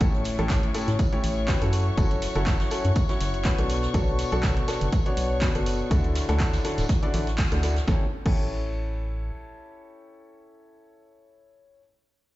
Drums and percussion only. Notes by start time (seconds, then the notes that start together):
0.01 kick, closed hi-hat, tambourine
0.14 closed hi-hat
0.24 snare, open hi-hat, tambourine
0.39 closed hi-hat
0.50 kick, snare, clap, closed hi-hat, tambourine
0.63 closed hi-hat
0.74 open hi-hat, tambourine
0.88 snare, closed hi-hat
0.99 kick, closed hi-hat, tambourine
1.13 closed hi-hat
1.24 open hi-hat, tambourine
1.48 kick, snare, clap, closed hi-hat, tambourine
1.62 closed hi-hat
1.73 open hi-hat, tambourine
1.98 kick, closed hi-hat, tambourine
2.11 closed hi-hat
2.22 snare, open hi-hat, tambourine
2.35 closed hi-hat
2.47 kick, snare, clap, closed hi-hat, tambourine
2.60 snare, closed hi-hat
2.71 snare, open hi-hat, tambourine
2.85 closed hi-hat
2.95 kick, closed hi-hat, tambourine
3.09 snare, closed hi-hat
3.20 snare, open hi-hat, tambourine
3.34 closed hi-hat
3.45 kick, snare, clap, closed hi-hat, tambourine
3.58 closed hi-hat
3.69 snare, open hi-hat, tambourine
3.82 snare
3.94 kick, closed hi-hat, tambourine
4.07 closed hi-hat
4.19 snare, open hi-hat, tambourine
4.32 closed hi-hat
4.43 kick, snare, clap, closed hi-hat, tambourine
4.57 closed hi-hat
4.68 snare, open hi-hat, tambourine
4.81 closed hi-hat
4.92 kick, closed hi-hat, tambourine
5.06 closed hi-hat
5.17 open hi-hat, tambourine
5.41 kick, snare, clap, closed hi-hat, tambourine
5.54 closed hi-hat
5.66 open hi-hat, tambourine
5.91 kick, closed hi-hat, tambourine
6.04 closed hi-hat
6.15 snare, open hi-hat, tambourine
6.29 snare, closed hi-hat
6.40 kick, snare, clap, closed hi-hat, tambourine
6.53 snare, closed hi-hat, tambourine
6.64 snare, open hi-hat
6.78 snare, closed hi-hat, tambourine
6.89 kick, snare, closed hi-hat
7.03 closed hi-hat
7.14 open hi-hat, tambourine
7.27 snare, closed hi-hat
7.38 kick, clap, closed hi-hat, tambourine
7.52 closed hi-hat
7.63 snare, open hi-hat, tambourine
7.76 snare, closed hi-hat
7.88 kick, snare
8.26 kick, crash